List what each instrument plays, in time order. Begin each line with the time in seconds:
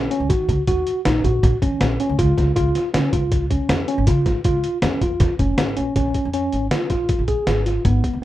0.11 tine electric piano C#4, closed hi-hat
0.20 upright bass C#2
0.29 upright bass D#3, tine electric piano F#4, kick, closed hi-hat
0.48 upright bass C#2, kick, closed hi-hat
0.67 upright bass D#2, tine electric piano F#4, kick, closed hi-hat
0.87 closed hi-hat
1.05 upright bass A#1, tine electric piano D#4, snare, closed hi-hat
1.24 upright bass A#1, tine electric piano F#4, kick, closed hi-hat
1.43 upright bass A#1, kick, closed hi-hat
1.62 upright bass D#3, tine electric piano C#4, kick, closed hi-hat
1.81 upright bass A#1, snare, closed hi-hat
2.00 tine electric piano C#4, closed hi-hat
2.09 upright bass C#2
2.19 upright bass C#2, tine electric piano F4, kick, closed hi-hat
2.38 upright bass C#2, kick, snare, closed hi-hat
2.56 upright bass C#2, tine electric piano F4, kick, closed hi-hat
2.75 snare, closed hi-hat
2.94 upright bass C#3, tine electric piano C#4, snare, closed hi-hat
3.12 upright bass C#2, tine electric piano F4, kick, closed hi-hat
3.32 kick, closed hi-hat
3.50 tine electric piano C#4, kick, closed hi-hat
3.69 upright bass F2, snare, closed hi-hat
3.88 tine electric piano C#4, closed hi-hat
3.98 upright bass G#1
4.07 upright bass C#3, tine electric piano F4, kick, closed hi-hat
4.26 upright bass G#1, kick, snare, closed hi-hat
4.44 upright bass C#2, tine electric piano F4, kick, closed hi-hat
4.64 closed hi-hat
4.82 upright bass F2, tine electric piano C#4, snare, closed hi-hat
5.01 upright bass F2, tine electric piano F4, kick, closed hi-hat
5.20 upright bass F2, kick, snare, closed hi-hat
5.39 upright bass F1, tine electric piano C#4, kick, closed hi-hat
5.58 upright bass G#1, snare, closed hi-hat
5.77 upright bass A#1, tine electric piano C#4, closed hi-hat
5.96 upright bass A#1, tine electric piano C#4, kick, closed hi-hat
6.14 kick, closed hi-hat
6.25 upright bass F2
6.34 tine electric piano C#4, closed hi-hat
6.52 upright bass G#1, closed hi-hat
6.71 tine electric piano F4, snare, closed hi-hat
6.90 upright bass A#1, tine electric piano F4, kick, snare, closed hi-hat
7.09 kick, closed hi-hat
7.19 upright bass A#1
7.28 tine electric piano G#4, kick, closed hi-hat
7.47 upright bass G#1, snare, closed hi-hat
7.66 tine electric piano F4, snare, closed hi-hat
7.85 upright bass G#1, tine electric piano B3, kick, closed hi-hat
8.04 kick, closed hi-hat
8.13 upright bass F1